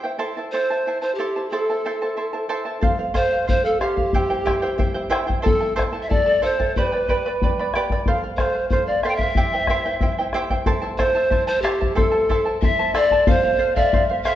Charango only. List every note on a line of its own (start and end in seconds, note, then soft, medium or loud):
0.04 0.18 E4 soft
0.04 0.18 C5 soft
0.04 0.19 G5 soft
0.19 0.36 E4 medium
0.19 0.36 A4 medium
0.19 0.37 C5 medium
0.19 0.36 E5 medium
0.19 0.36 A5 medium
0.37 0.53 E4 soft
0.37 0.53 C5 soft
0.37 0.53 A5 soft
0.53 0.70 E4 medium
0.53 0.70 A4 medium
0.53 0.69 C5 medium
0.53 0.70 E5 medium
0.53 0.69 A5 medium
0.70 0.86 E4 soft
0.70 0.87 C5 soft
0.70 0.87 A5 soft
0.86 1.02 E4 medium
0.86 1.02 C5 soft
0.86 1.03 E5 soft
0.86 1.01 A5 medium
1.02 1.18 E4 soft
1.02 1.19 C5 soft
1.02 1.19 A5 soft
1.19 1.36 E4 medium
1.19 1.35 A4 medium
1.19 1.36 C5 medium
1.19 1.36 E5 medium
1.19 1.35 A5 medium
1.36 1.51 E4 soft
1.36 1.52 C5 soft
1.36 1.52 A5 soft
1.52 1.68 E4 medium
1.52 1.68 A4 medium
1.52 1.69 C5 medium
1.52 1.69 E5 medium
1.52 1.68 A5 medium
1.70 1.85 E4 soft
1.70 1.85 C5 soft
1.70 1.85 A5 soft
1.85 2.02 E4 medium
1.85 2.01 A4 medium
1.85 2.01 C5 medium
1.85 2.02 E5 medium
1.85 2.01 A5 medium
2.02 2.16 E4 soft
2.02 2.16 C5 soft
2.02 2.16 A5 soft
2.17 2.33 E4 soft
2.17 2.33 C5 soft
2.17 2.33 E5 soft
2.17 2.32 A5 soft
2.33 2.48 E4 soft
2.33 2.48 C5 soft
2.33 2.49 A5 soft
2.49 2.65 E4 medium
2.49 2.66 A4 medium
2.49 2.65 C5 medium
2.49 2.66 E5 medium
2.49 2.64 A5 medium
2.65 2.81 E4 soft
2.65 2.81 C5 soft
2.65 2.82 A5 soft
2.81 2.98 A4 medium
2.81 2.99 C5 medium
2.81 2.98 F5 medium
2.99 3.13 C5 soft
2.99 3.14 F5 soft
3.14 3.31 A4 medium
3.14 3.31 C5 medium
3.14 3.31 F5 medium
3.32 3.46 C5 soft
3.32 3.46 F5 soft
3.46 3.64 A4 soft
3.46 3.64 C5 soft
3.46 3.63 F5 medium
3.65 3.80 C5 soft
3.65 3.80 F5 soft
3.81 3.97 A4 medium
3.81 3.97 C5 medium
3.81 3.96 F5 medium
3.97 4.14 C5 soft
3.97 4.13 F5 soft
4.14 4.30 E4 medium
4.14 4.30 G4 medium
4.14 4.29 C5 medium
4.14 4.30 E5 medium
4.14 4.29 G5 medium
4.30 4.45 E4 soft
4.30 4.46 C5 soft
4.30 4.45 G5 soft
4.46 4.62 E4 medium
4.46 4.62 G4 medium
4.46 4.62 C5 medium
4.46 4.62 E5 medium
4.46 4.61 G5 medium
4.62 4.78 E4 soft
4.62 4.78 C5 medium
4.62 4.78 G5 medium
4.78 4.94 E4 medium
4.78 4.93 C5 medium
4.78 4.95 E5 medium
4.78 4.93 G5 medium
4.94 5.09 E4 soft
4.94 5.09 C5 soft
4.94 5.10 G5 medium
5.10 5.27 E4 medium
5.10 5.27 G4 medium
5.10 5.27 C5 medium
5.10 5.27 E5 medium
5.10 5.26 G5 medium
5.27 5.42 E4 soft
5.27 5.41 C5 soft
5.27 5.43 G5 soft
5.42 5.60 E4 medium
5.42 5.60 A4 medium
5.42 5.60 C5 medium
5.42 5.60 E5 medium
5.42 5.59 A5 medium
5.61 5.75 E4 soft
5.61 5.75 A4 soft
5.61 5.75 A5 soft
5.76 5.93 E4 medium
5.76 5.91 A4 medium
5.76 5.93 C5 medium
5.76 5.93 E5 medium
5.76 5.91 A5 medium
5.92 6.09 E4 soft
5.92 6.09 A4 soft
5.92 6.09 A5 medium
6.09 6.26 E4 medium
6.09 6.25 A4 medium
6.09 6.26 E5 medium
6.09 6.25 A5 medium
6.26 6.41 E4 soft
6.26 6.42 A4 soft
6.26 6.42 A5 soft
6.42 6.59 E4 medium
6.42 6.59 A4 medium
6.42 6.59 C5 medium
6.42 6.59 E5 medium
6.42 6.58 A5 medium
6.60 6.76 E4 soft
6.60 6.76 A4 soft
6.60 6.76 A5 medium
6.77 6.92 G4 medium
6.77 6.93 B4 medium
6.77 6.92 D5 medium
6.77 6.93 G5 medium
6.77 6.91 B5 medium
6.92 7.09 B4 soft
6.92 7.09 D5 soft
6.92 7.08 B5 soft
7.09 7.24 G4 medium
7.09 7.25 B4 medium
7.09 7.25 D5 medium
7.09 7.25 G5 medium
7.09 7.25 B5 medium
7.26 7.42 B4 soft
7.26 7.42 D5 soft
7.26 7.41 B5 medium
7.43 7.58 B4 medium
7.43 7.58 D5 medium
7.43 7.58 G5 medium
7.43 7.58 B5 soft
7.59 7.75 B4 soft
7.59 7.75 D5 medium
7.59 7.74 B5 medium
7.75 7.90 G4 medium
7.75 7.91 B4 medium
7.75 7.91 D5 medium
7.75 7.91 G5 medium
7.75 7.91 B5 medium
7.92 8.07 B4 soft
7.92 8.07 D5 soft
7.92 8.07 B5 soft
8.07 8.23 A4 medium
8.07 8.23 C5 medium
8.07 8.22 F5 medium
8.24 8.39 C5 soft
8.24 8.39 F5 soft
8.38 8.55 A4 medium
8.38 8.54 C5 medium
8.38 8.53 F5 medium
8.54 8.71 C5 soft
8.54 8.71 F5 soft
8.72 8.88 A4 soft
8.72 8.88 C5 medium
8.72 8.86 F5 medium
8.88 9.04 C5 soft
8.88 9.04 F5 soft
9.04 9.20 A4 medium
9.04 9.21 C5 medium
9.04 9.20 F5 medium
9.21 9.36 C5 soft
9.21 9.37 F5 medium
9.37 9.53 E4 medium
9.37 9.53 G4 medium
9.37 9.53 C5 medium
9.37 9.53 E5 medium
9.37 9.52 G5 medium
9.53 9.68 E4 soft
9.53 9.69 C5 soft
9.53 9.69 G5 soft
9.69 9.86 E4 medium
9.69 9.86 G4 medium
9.69 9.85 C5 medium
9.69 9.85 E5 medium
9.69 9.84 G5 medium
9.86 10.01 E4 soft
9.86 10.01 C5 soft
9.86 10.01 G5 medium
10.01 10.18 E4 medium
10.01 10.18 C5 medium
10.01 10.18 E5 medium
10.01 10.17 G5 medium
10.19 10.33 E4 soft
10.19 10.34 C5 soft
10.19 10.34 G5 soft
10.34 10.51 E4 medium
10.34 10.50 G4 medium
10.34 10.50 C5 medium
10.34 10.51 E5 medium
10.34 10.49 G5 medium
10.51 10.65 E4 soft
10.51 10.65 C5 soft
10.51 10.67 G5 medium
10.66 10.82 E4 medium
10.66 10.83 A4 medium
10.66 10.81 C5 medium
10.66 10.82 E5 medium
10.66 10.81 A5 medium
10.82 10.98 E4 soft
10.82 10.98 C5 soft
10.82 10.98 A5 soft
10.99 11.15 E4 medium
10.99 11.15 A4 medium
10.99 11.15 C5 medium
10.99 11.15 E5 medium
10.99 11.14 A5 medium
11.15 11.30 E4 soft
11.15 11.30 C5 soft
11.15 11.31 A5 medium
11.30 11.47 E4 medium
11.30 11.47 C5 medium
11.30 11.48 E5 medium
11.30 11.46 A5 medium
11.47 11.63 E4 soft
11.47 11.63 C5 medium
11.47 11.63 A5 soft
11.63 11.81 E4 medium
11.63 11.80 A4 medium
11.63 11.80 C5 medium
11.63 11.80 E5 medium
11.63 11.79 A5 medium
11.80 11.95 E4 soft
11.80 11.95 C5 soft
11.80 11.95 A5 soft
11.95 12.12 E4 medium
11.95 12.13 A4 medium
11.95 12.11 C5 medium
11.95 12.11 E5 medium
11.95 12.10 A5 medium
12.11 12.29 E4 soft
12.11 12.29 C5 soft
12.11 12.29 A5 soft
12.29 12.45 E4 medium
12.29 12.46 A4 medium
12.29 12.44 C5 medium
12.29 12.45 E5 medium
12.29 12.44 A5 medium
12.45 12.62 E4 soft
12.45 12.62 C5 soft
12.45 12.62 A5 soft
12.63 12.79 E4 medium
12.63 12.78 C5 soft
12.63 12.79 E5 medium
12.63 12.78 A5 medium
12.79 12.94 E4 soft
12.79 12.94 C5 soft
12.79 12.95 A5 medium
12.94 13.11 E4 medium
12.94 13.11 A4 medium
12.94 13.12 C5 medium
12.94 13.11 E5 medium
12.94 13.11 A5 medium
13.12 13.27 E4 soft
13.12 13.26 C5 soft
13.12 13.28 A5 medium
13.27 13.44 A4 medium
13.27 13.43 C5 medium
13.27 13.42 F5 medium
13.43 13.58 C5 soft
13.43 13.59 F5 medium
13.58 13.76 A4 soft
13.58 13.75 C5 medium
13.58 13.75 F5 medium
13.76 13.92 A4 medium
13.76 13.92 C5 medium
13.76 13.93 F5 medium
13.93 14.09 A4 medium
13.93 14.09 C5 soft
13.93 14.08 F5 medium
14.09 14.24 C5 soft
14.09 14.25 F5 medium
14.25 14.35 A4 medium
14.25 14.35 C5 medium
14.25 14.35 F5 medium